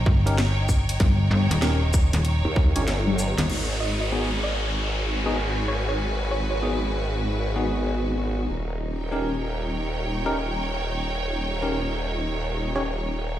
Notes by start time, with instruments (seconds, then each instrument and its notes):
Already playing: string section D#4 C#5 G5
0.06 fm bass G1, kick
0.26 tine electric piano C#4 D#4 G4 A#4, closed hi-hat
0.38 snare, closed hi-hat
0.69 kick, shaker
0.89 closed hi-hat
1.00 fm bass G1, kick, closed hi-hat
1.31 fm bass G1
1.51 fm bass D#1, snare, closed hi-hat
1.62 tine electric piano C#4 D#4 G4 A#4, snare, closed hi-hat
1.94 kick, shaker
2.13 fm bass D#1, snare, closed hi-hat
2.25 closed hi-hat
2.45 wobble bass D#2
2.56 kick, snare
2.76 wobble bass G1, tine electric piano C#4 D#4 G4 C#5, closed hi-hat
2.88 snare, closed hi-hat
3.07 high tom
3.19 shaker
3.38 fm bass D#1, snare, closed hi-hat
3.50 wobble bass G#1, string section F#4, crash, downlifter
3.80 synth pluck D#5
4.01 synth pluck D#5
4.12 tine electric piano B3 D#4 F#4 G#4
4.18 string section B4
4.44 synth pluck D#5
4.51 string section G#5
5.26 tine electric piano B3 D#4 F#4 G#4
5.68 synth pluck C#5
5.89 synth pluck C#5
6.31 synth pluck C#5
6.51 synth pluck C#5
6.62 tine electric piano B3 D#4 F#4 G#4
7.56 tine electric piano B3 D#4 F#4 G#4
8.50 wobble bass D#1, string section D#4
8.92 string section G5
9.06 string section C#5
9.12 tine electric piano C#4 D#4 G4 A#4
10.26 tine electric piano C#4 D#4 G4 A#4
11.62 tine electric piano C#4 D#4 G4 A#4
12.76 tine electric piano C#4 D#4 G4 C#5